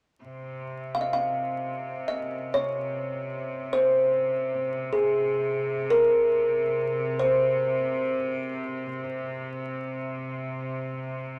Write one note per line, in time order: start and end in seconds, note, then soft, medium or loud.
0.22 11.39 C3 soft
0.95 1.03 F5 medium
1.01 1.10 D#5 medium
1.13 2.10 F5 medium
2.08 2.56 D#5 medium
2.54 3.75 C#5 medium
3.73 4.95 C5 medium
4.93 5.92 G#4 medium
5.90 7.25 A#4 medium
7.19 10.61 C5 medium